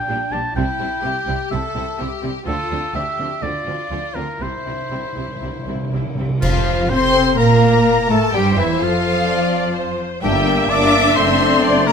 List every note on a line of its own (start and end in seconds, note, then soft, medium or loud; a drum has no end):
0.00 0.57 D4 medium
0.00 0.34 G5 loud
0.08 0.16 A#1 medium
0.08 0.17 A#2 medium
0.08 0.16 G3 medium
0.08 0.17 D4 medium
0.08 0.17 G4 medium
0.31 0.39 A#1 medium
0.31 0.41 A#2 medium
0.31 0.40 G3 medium
0.31 0.40 D4 medium
0.31 0.40 G4 medium
0.31 0.55 A5 loud
0.55 0.63 C2 medium
0.55 0.65 C3 medium
0.55 0.64 G3 medium
0.55 0.64 C4 medium
0.55 1.03 E4 medium
0.55 0.66 E4 medium
0.55 1.50 G5 loud
0.79 0.87 C2 medium
0.79 0.88 C3 medium
0.79 0.88 G3 medium
0.79 0.88 C4 medium
0.79 0.89 E4 medium
1.03 1.11 C2 medium
1.03 1.12 C3 medium
1.03 1.11 G3 medium
1.03 1.11 C4 medium
1.03 1.13 E4 medium
1.03 1.51 G4 medium
1.27 1.35 C2 medium
1.27 1.36 C3 medium
1.27 1.36 G3 medium
1.27 1.35 C4 medium
1.27 1.36 E4 medium
1.50 1.59 C2 medium
1.50 1.60 C3 medium
1.50 1.58 G3 medium
1.50 1.59 C4 medium
1.50 1.60 E4 medium
1.50 2.00 A4 medium
1.50 2.22 E5 medium
1.75 1.84 C2 medium
1.75 1.84 C3 medium
1.75 1.83 G3 medium
1.75 1.83 C4 medium
1.75 1.84 E4 medium
1.99 2.07 C2 medium
1.99 2.08 C3 medium
1.99 2.07 G3 medium
1.99 2.07 C4 medium
1.99 2.07 E4 medium
1.99 2.47 G4 medium
2.23 2.31 C2 medium
2.23 2.32 C3 medium
2.23 2.31 G3 medium
2.23 2.31 C4 medium
2.23 2.31 E4 medium
2.46 2.54 D2 medium
2.46 2.55 D3 medium
2.46 2.54 F3 medium
2.46 2.54 C4 medium
2.46 2.56 D4 medium
2.46 2.94 F4 medium
2.46 2.91 A4 loud
2.70 2.78 D2 medium
2.70 2.80 D3 medium
2.70 2.79 F3 medium
2.70 2.79 C4 medium
2.70 2.79 D4 medium
2.94 3.02 D2 medium
2.94 3.03 D3 medium
2.94 3.03 F3 medium
2.94 3.03 C4 medium
2.94 3.03 D4 medium
2.94 3.43 G4 medium
2.94 3.44 E5 loud
3.18 3.26 D2 medium
3.18 3.27 D3 medium
3.18 3.27 F3 soft
3.18 3.28 C4 soft
3.18 3.28 D4 medium
3.42 3.50 D2 medium
3.42 3.51 D3 medium
3.42 3.50 F3 soft
3.42 3.50 C4 soft
3.42 3.50 D4 medium
3.42 4.41 F4 medium
3.42 4.16 D5 medium
3.66 3.74 D2 medium
3.66 3.76 D3 medium
3.66 3.75 F3 soft
3.66 3.75 C4 soft
3.66 3.75 D4 soft
3.90 3.98 D2 medium
3.90 4.01 D3 medium
3.90 4.00 F3 soft
3.90 3.99 C4 soft
3.90 4.00 D4 soft
4.15 4.23 D2 medium
4.15 4.25 D3 medium
4.15 4.23 F3 soft
4.15 4.24 C4 soft
4.15 4.24 D4 soft
4.15 4.44 A#4 medium
4.40 4.48 C2 medium
4.40 4.49 C3 medium
4.40 4.49 C3 soft
4.40 4.49 G3 medium
4.40 4.49 C4 medium
4.40 4.49 E4 soft
4.40 6.14 E4 medium
4.40 5.93 C5 medium
4.57 4.64 C3 soft
4.65 4.74 C2 medium
4.65 4.72 C3 soft
4.65 4.75 C3 soft
4.65 4.75 G3 soft
4.65 4.75 C4 soft
4.65 4.74 E4 soft
4.73 4.80 C3 soft
4.81 4.88 C3 soft
4.90 4.99 C2 soft
4.90 4.96 C3 soft
4.90 5.00 C3 medium
4.90 4.99 G3 soft
4.90 5.00 C4 soft
4.90 4.99 E4 soft
4.97 5.03 C3 soft
5.04 5.11 C3 soft
5.12 5.18 C3 soft
5.17 5.25 C2 medium
5.17 5.25 C3 soft
5.17 5.26 C3 soft
5.17 5.25 G3 soft
5.17 5.25 C4 soft
5.17 5.25 E4 soft
5.27 5.34 C3 medium
5.36 5.42 C3 medium
5.42 5.50 C2 soft
5.42 5.50 C3 medium
5.42 5.51 G3 soft
5.42 5.51 C4 soft
5.42 5.51 E4 soft
5.51 5.58 C3 medium
5.59 5.66 C3 medium
5.67 5.75 C2 medium
5.67 5.74 C3 medium
5.67 5.76 C3 soft
5.67 5.76 G3 soft
5.67 5.76 C4 soft
5.67 5.77 E4 soft
5.75 5.82 C3 medium
5.83 5.89 C3 medium
5.90 6.00 C2 medium
5.90 5.97 C3 medium
5.90 6.00 C3 medium
5.90 6.01 G3 soft
5.90 6.01 C4 soft
5.94 6.05 C3 medium
5.94 6.02 E4 soft
6.06 6.14 C3 medium
6.15 6.25 C2 soft
6.15 6.20 C3 medium
6.15 6.25 C3 medium
6.15 6.27 G3 soft
6.15 6.27 C4 soft
6.20 6.28 C3 medium
6.20 6.28 E4 soft
6.29 6.37 C3 medium
6.41 7.10 F2 loud
6.41 6.87 F2 medium
6.41 6.86 F3 medium
6.41 6.87 F3 medium
6.41 6.91 F3 medium
6.41 6.91 F4 medium
6.41 6.87 F4 medium
6.41 6.93 F4 loud
6.41 6.88 C5 medium
6.41 6.91 F5 medium
6.41 6.87 F5 medium
6.41 concert bass drum medium
6.41 crash medium
6.89 7.38 C3 loud
6.89 7.40 C4 loud
6.89 7.38 C4 medium
6.89 7.37 C4 loud
6.89 7.39 A4 medium
6.89 7.36 C5 medium
6.89 7.37 C5 loud
6.89 7.38 C5 medium
6.89 7.40 C6 loud
6.89 7.38 C6 loud
7.37 8.08 A#2 loud
7.37 8.09 A#3 loud
7.37 8.11 A#3 loud
7.37 8.10 A#3 loud
7.37 8.08 A#4 medium
7.37 8.09 A#4 medium
7.37 8.32 A#4 medium
7.37 8.09 A#4 loud
7.37 8.08 A#5 medium
7.37 8.13 A#5 loud
8.08 8.18 A2 medium
8.08 8.33 A3 medium
8.08 8.18 A3 medium
8.08 8.33 A3 medium
8.08 8.34 A4 medium
8.08 8.37 A4 medium
8.08 8.34 A4 medium
8.08 8.34 A5 loud
8.08 8.34 A5 medium
8.33 8.57 G2 medium
8.33 8.44 G3 medium
8.33 8.57 G3 loud
8.33 8.57 G3 medium
8.33 8.57 G4 medium
8.33 8.59 G4 medium
8.33 8.61 G4 medium
8.33 8.81 C5 medium
8.33 8.57 G5 medium
8.33 8.59 G5 medium
8.55 8.81 E2 medium
8.55 8.79 E3 medium
8.55 8.81 E3 medium
8.55 8.69 E3 medium
8.55 8.81 E4 medium
8.55 8.81 E5 loud
8.55 8.80 E5 medium
8.59 8.85 E4 medium
8.80 9.97 F2 medium
8.80 9.97 F3 medium
8.80 9.99 F3 medium
8.80 9.97 F3 medium
8.80 9.99 F4 medium
8.80 9.98 F4 medium
8.80 10.00 F4 medium
8.80 9.29 A4 medium
8.80 9.99 F5 loud
8.80 9.97 F5 medium
9.29 9.76 D5 medium
9.76 10.23 C5 medium
10.22 10.64 G1 loud
10.22 10.66 G3 loud
10.22 10.66 A#3 medium
10.22 11.19 A#3 medium
10.22 10.67 D4 medium
10.22 10.34 D4 medium
10.22 10.72 G4 loud
10.22 11.92 D5 loud
10.22 11.61 E5 loud
10.22 10.66 G5 loud
10.22 10.71 G5 loud
10.35 10.47 A#3 medium
10.35 10.47 G4 medium
10.46 10.58 D4 medium
10.58 10.70 A#3 medium
10.58 10.70 G4 medium
10.69 11.11 G1 medium
10.69 11.17 A#3 medium
10.69 10.81 D4 medium
10.69 11.16 D4 loud
10.69 11.16 D4 medium
10.69 11.16 D5 loud
10.69 11.16 D6 loud
10.69 11.15 D6 loud
10.81 10.93 A#3 medium
10.81 10.93 G4 medium
10.92 11.05 D4 medium
11.05 11.17 A#3 medium
11.05 11.17 G4 medium
11.16 11.58 F#1 loud
11.16 11.92 A3 loud
11.16 11.92 A3 medium
11.16 11.27 C4 medium
11.16 11.88 C4 loud
11.16 11.27 D4 medium
11.16 11.92 D4 medium
11.16 11.89 C5 loud
11.16 11.89 C6 loud
11.16 11.87 C6 loud
11.29 11.40 A3 medium
11.29 11.40 C4 medium
11.41 11.52 C4 medium
11.41 11.53 D4 medium
11.53 11.65 A3 medium
11.53 11.64 C4 medium
11.64 11.92 F#1 loud
11.64 11.75 C4 medium
11.64 11.76 D4 medium
11.64 11.92 D5 loud
11.78 11.89 A3 medium
11.78 11.89 C4 medium
11.87 11.92 A#3 loud
11.87 11.92 A#4 loud
11.87 11.92 A#5 loud